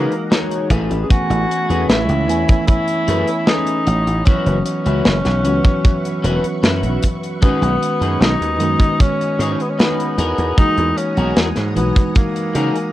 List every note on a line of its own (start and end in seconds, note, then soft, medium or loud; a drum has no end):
0.00 0.68 E3 medium
0.00 0.68 G#3 medium
0.00 0.71 A#3 medium
0.00 0.12 D#4 loud
0.00 0.69 D#4 medium
0.00 0.12 F#4 loud
0.00 0.70 F#4 loud
0.00 0.12 G#4 loud
0.00 0.67 G#4 medium
0.00 0.12 B4 loud
0.00 0.67 D#5 medium
0.00 0.68 F#5 medium
0.00 0.68 A#5 medium
0.12 closed hi-hat soft
0.31 0.70 D#4 medium
0.31 0.71 F#4 medium
0.31 0.70 G#4 medium
0.31 0.71 C#5 medium
0.31 snare loud
0.31 closed hi-hat medium
0.51 closed hi-hat medium
0.70 0.85 A1 loud
0.70 4.23 A3 medium
0.70 1.50 C#4 medium
0.70 1.50 G#4 medium
0.70 1.50 A4 medium
0.70 1.50 B4 loud
0.70 4.23 C#5 medium
0.70 4.23 G#5 medium
0.70 4.23 B5 medium
0.70 kick medium
0.70 closed hi-hat medium
0.91 1.05 A1 loud
0.91 closed hi-hat medium
1.03 1.11 G#4 medium
1.09 2.24 E3 medium
1.09 2.24 A3 medium
1.09 2.24 B3 medium
1.09 2.25 C#4 medium
1.09 1.88 F#4 loud
1.09 2.25 G#5 loud
1.09 muted slap bass stroke soft
1.09 kick loud
1.09 closed hi-hat medium
1.30 1.44 A1 loud
1.30 closed hi-hat medium
1.51 closed hi-hat medium
1.70 1.84 E2 medium
1.70 1.99 C#4 medium
1.70 2.00 G#4 medium
1.70 2.00 A4 medium
1.70 2.00 B4 loud
1.70 closed hi-hat medium
1.89 2.04 A1 loud
1.89 2.64 E4 loud
1.89 snare loud
1.89 closed hi-hat medium
2.09 2.29 C#2 medium
2.09 closed hi-hat medium
2.27 2.44 E2 loud
2.27 4.21 E3 medium
2.27 4.21 A3 medium
2.27 4.22 B3 medium
2.27 4.22 C#4 medium
2.27 4.22 G#5 loud
2.27 muted clean electric guitar stroke medium
2.27 closed hi-hat loud
2.48 muted clean electric guitar stroke soft
2.48 kick loud
2.48 closed hi-hat medium
2.67 3.48 E4 loud
2.67 kick loud
2.67 closed hi-hat medium
2.88 closed hi-hat medium
3.08 3.22 F#2 loud
3.08 3.28 C#4 loud
3.08 3.28 G#4 loud
3.08 3.28 A4 loud
3.08 3.28 B4 loud
3.08 closed hi-hat loud
3.27 closed hi-hat medium
3.46 3.87 C#4 medium
3.46 4.27 D#4 loud
3.46 3.87 G#4 medium
3.46 3.87 A4 medium
3.46 3.87 B4 medium
3.46 snare loud
3.46 closed hi-hat medium
3.66 closed hi-hat medium
3.87 4.01 A1 loud
3.87 closed hi-hat medium
4.07 4.21 A1 medium
4.07 closed hi-hat medium
4.25 5.39 E3 medium
4.25 5.40 F#3 medium
4.25 5.40 B3 medium
4.25 4.65 C#4 loud
4.25 4.56 C#4 loud
4.25 5.41 C#4 medium
4.25 4.56 E4 medium
4.25 4.56 F#4 loud
4.25 5.41 F#4 medium
4.25 10.15 B4 medium
4.25 4.57 B4 loud
4.25 7.39 E5 medium
4.25 7.39 F#5 medium
4.25 10.15 C#6 medium
4.25 kick loud
4.25 closed hi-hat medium
4.46 4.60 F#1 medium
4.46 closed hi-hat medium
4.65 6.98 C#4 loud
4.65 closed hi-hat loud
4.85 5.00 C#2 medium
4.85 5.15 C#4 medium
4.85 5.15 E4 medium
4.85 5.16 F#4 medium
4.85 5.16 B4 loud
4.85 closed hi-hat medium
5.05 5.20 F#1 loud
5.05 snare loud
5.05 closed hi-hat medium
5.25 5.45 B1 medium
5.25 snare soft
5.25 closed hi-hat medium
5.44 5.59 C#2 medium
5.44 7.37 E3 medium
5.44 7.37 F#3 medium
5.44 7.38 B3 medium
5.44 7.38 C#4 medium
5.44 7.39 F#4 loud
5.44 muted clean electric guitar stroke medium
5.44 closed hi-hat medium
5.64 muted clean electric guitar stroke soft
5.64 kick loud
5.64 closed hi-hat soft
5.85 kick loud
5.85 closed hi-hat medium
6.05 closed hi-hat medium
6.23 6.38 E1 loud
6.23 6.43 C#4 loud
6.23 6.44 E4 loud
6.23 6.44 F#4 loud
6.23 6.44 B4 loud
6.23 closed hi-hat medium
6.44 muted slap bass stroke soft
6.44 closed hi-hat medium
6.63 6.84 F#2 medium
6.63 7.03 C#4 medium
6.63 7.03 E4 medium
6.63 7.03 F#4 medium
6.63 7.03 B4 medium
6.63 snare loud
6.63 closed hi-hat medium
6.83 6.97 B1 medium
6.83 closed hi-hat medium
7.02 kick medium
7.02 closed hi-hat loud
7.23 closed hi-hat medium
7.41 8.55 D#3 medium
7.41 8.56 G#3 medium
7.41 8.23 B3 loud
7.41 8.56 B3 medium
7.41 7.72 C#4 loud
7.41 8.57 C#4 medium
7.41 7.72 D#4 loud
7.41 8.57 F#4 medium
7.41 7.72 G#4 loud
7.41 7.72 B4 loud
7.41 10.16 D#5 medium
7.41 12.92 G#5 medium
7.41 muted slap bass stroke soft
7.41 kick loud
7.41 closed hi-hat medium
7.62 7.76 B1 loud
7.62 closed hi-hat medium
7.83 closed hi-hat medium
8.01 8.16 F#2 medium
8.01 8.31 C#4 medium
8.01 8.31 D#4 medium
8.01 8.31 G#4 medium
8.01 8.31 B4 medium
8.01 closed hi-hat medium
8.21 8.35 B1 loud
8.21 9.02 D#4 loud
8.21 snare loud
8.21 closed hi-hat medium
8.41 8.60 D#2 medium
8.41 closed hi-hat medium
8.60 8.75 F#2 medium
8.60 10.16 D#3 medium
8.60 10.16 G#3 medium
8.60 10.17 B3 medium
8.60 10.17 C#4 medium
8.60 10.17 F#4 loud
8.60 muted clean electric guitar stroke medium
8.60 closed hi-hat medium
8.80 muted clean electric guitar stroke soft
8.80 kick loud
8.80 closed hi-hat medium
9.00 9.44 C#4 loud
9.00 kick loud
9.00 closed hi-hat medium
9.21 closed hi-hat medium
9.39 9.54 G#2 loud
9.39 9.59 C#4 loud
9.39 9.60 D#4 medium
9.39 9.54 D#4 medium
9.39 9.60 G#4 loud
9.39 9.60 C#5 loud
9.39 closed hi-hat medium
9.52 9.63 C#4 medium
9.60 9.71 B3 medium
9.60 closed hi-hat medium
9.70 9.80 C#4 medium
9.79 10.58 B3 loud
9.79 10.18 C#4 medium
9.79 10.17 D#4 medium
9.79 10.18 G#4 medium
9.79 10.19 B4 medium
9.79 snare loud
9.79 closed hi-hat medium
10.00 closed hi-hat medium
10.18 10.33 E2 loud
10.18 10.97 D#4 medium
10.18 10.97 F#4 medium
10.18 10.98 G#4 medium
10.18 10.98 A#4 medium
10.18 12.92 F#5 medium
10.18 12.92 A#5 medium
10.18 12.92 D#6 medium
10.18 closed hi-hat loud
10.38 10.53 E2 loud
10.38 closed hi-hat medium
10.57 11.71 E3 medium
10.57 11.72 G#3 medium
10.57 11.72 A#3 medium
10.57 10.99 D#4 loud
10.57 11.72 D#4 medium
10.57 11.73 F#4 loud
10.57 muted slap bass stroke soft
10.57 kick loud
10.57 closed hi-hat medium
10.77 10.92 E2 loud
10.77 closed hi-hat soft
10.98 11.50 C#4 loud
10.98 closed hi-hat medium
11.17 11.32 B1 medium
11.17 11.47 D#4 medium
11.17 11.47 F#4 medium
11.17 11.47 G#4 medium
11.17 11.47 A#4 loud
11.17 closed hi-hat medium
11.37 11.51 E2 loud
11.37 snare loud
11.37 closed hi-hat medium
11.56 11.78 G#2 medium
11.56 snare soft
11.56 closed hi-hat medium
11.75 11.91 B1 medium
11.75 12.92 E3 medium
11.75 12.92 G#3 medium
11.75 12.13 B3 medium
11.75 12.92 D#4 medium
11.75 12.92 F#4 loud
11.75 muted clean electric guitar stroke medium
11.75 closed hi-hat medium
11.96 muted clean electric guitar stroke soft
11.96 kick loud
11.96 closed hi-hat medium
12.15 12.92 A#3 medium
12.15 kick loud
12.15 closed hi-hat medium
12.36 closed hi-hat medium
12.55 12.70 C#3 loud
12.55 12.75 D#4 loud
12.55 12.75 F#4 loud
12.55 12.75 G#4 loud
12.55 12.76 A#4 loud
12.55 closed hi-hat medium
12.76 closed hi-hat medium